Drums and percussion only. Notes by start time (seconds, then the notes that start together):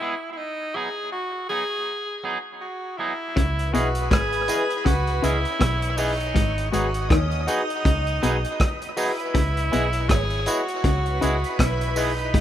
3.37 kick, closed hi-hat
3.59 closed hi-hat
3.75 closed hi-hat, tambourine
3.95 closed hi-hat
4.11 kick, cross-stick, closed hi-hat
4.32 closed hi-hat
4.48 closed hi-hat, tambourine
4.70 closed hi-hat
4.86 kick, closed hi-hat
5.07 closed hi-hat
5.24 closed hi-hat, tambourine
5.45 closed hi-hat
5.61 kick, cross-stick, closed hi-hat
5.82 closed hi-hat
5.98 open hi-hat, tambourine
6.20 closed hi-hat
6.36 kick, closed hi-hat
6.58 closed hi-hat
6.73 closed hi-hat, tambourine
6.94 closed hi-hat
7.10 kick, cross-stick, closed hi-hat
7.31 closed hi-hat
7.47 closed hi-hat, tambourine
7.70 closed hi-hat
7.85 kick, closed hi-hat
8.07 closed hi-hat
8.23 closed hi-hat, tambourine
8.44 closed hi-hat
8.60 kick, cross-stick, closed hi-hat
8.82 closed hi-hat
8.97 open hi-hat, tambourine
9.19 closed hi-hat
9.35 kick, closed hi-hat
9.57 closed hi-hat
9.73 closed hi-hat, tambourine
9.93 closed hi-hat
10.09 kick, cross-stick, closed hi-hat
10.30 closed hi-hat
10.46 closed hi-hat, tambourine
10.68 closed hi-hat
10.84 kick, closed hi-hat
11.06 closed hi-hat
11.22 closed hi-hat, tambourine
11.44 closed hi-hat
11.59 kick, cross-stick, closed hi-hat
11.81 closed hi-hat
11.96 open hi-hat, tambourine
12.19 closed hi-hat
12.34 kick, closed hi-hat